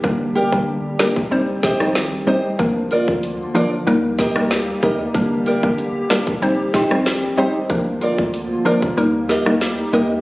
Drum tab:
HH |----------------|x-x-x-x-x-x-x-x-|x-x-x-x-x-x-x-x-|x-x-x-x-x-x-x-x-|
SD |------o---oro---|----------oro---|------o---oro---|----------oro---|
BD |o--o---o--o-----|o--o------o---o-|o--o---o--o-----|o--o---o--------|